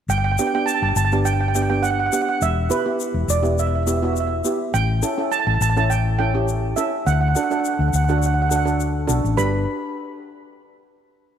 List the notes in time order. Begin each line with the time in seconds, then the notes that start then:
0.08 G1 G5, shaker
0.18 G5
0.24 G5
0.32 G5
0.38 B3 D4 G4 G5, shaker
0.47 G5
0.54 B3 D4 G4 G5
0.66 A5, shaker
0.75 A5
0.82 G1 A5
0.89 A5
0.96 G1 A5, shaker
1.05 A5
1.12 B3 D4 G4 A5, shaker
1.25 G5, shaker
1.33 G5
1.41 G5
1.48 G5
1.55 B3 D4 G4 G5, shaker
1.62 G5
1.70 B3 D4 G4 G5
1.83 F#5, shaker
1.90 F#5
1.99 F#5
2.06 F#5
2.12 B3 D4 G4 F#5, shaker
2.22 F#5
2.29 F#5
2.41 E1 E5, shaker
2.69 B3 E4 G4 B4, shaker
2.85 B3 E4 G4
3.00 shaker
3.14 E1
3.28 E1 D5, shaker
3.42 B3 E4 G4, shaker
3.58 E5, shaker
3.67 E5
3.75 E5
3.83 B3 E5
3.87 E4 G4 E5, shaker
3.97 E5
4.02 B3 E4 F#4 E5
4.13 E5, shaker
4.20 E5
4.27 E5
4.45 B3 E4 G4, shaker
4.74 A1 G5, shaker
5.03 C#4 E4 A4, shaker
5.18 C#4 E4 A4
5.32 A5, shaker
5.40 A5
5.47 A1 A5
5.54 A5
5.61 A1 A5, shaker
5.70 A5
5.77 C#4 E4 A4 A5, shaker
5.90 G5, shaker
6.19 C#4 E4 A4 G5
6.34 C#4 E4 G4
6.48 shaker
6.76 C#4 E4 A4 E5, shaker
7.07 D2 F#5, shaker
7.13 F#5
7.21 F#5
7.28 F#5
7.35 D4 F#4 A4 F#5, shaker
7.44 F#5
7.51 D4 F#4 A4 F#5, shaker
7.60 F#5
7.65 F#5, shaker
7.74 F#5
7.79 D2 F#5
7.88 F#5
7.93 D2 F#5, shaker
8.04 F#5
8.08 D4 F#4 A4 F#5, shaker
8.18 F#5, shaker
8.26 F#5
8.34 F#5
8.42 F#5
8.49 D4 F#4 A4 F#5, shaker
8.56 F#5
8.65 D4 F#4 A4, shaker
8.80 shaker
9.07 B1 D4 F#4 A4, shaker
9.24 A1, shaker
9.37 G1 D4 G4 B4 B5, shaker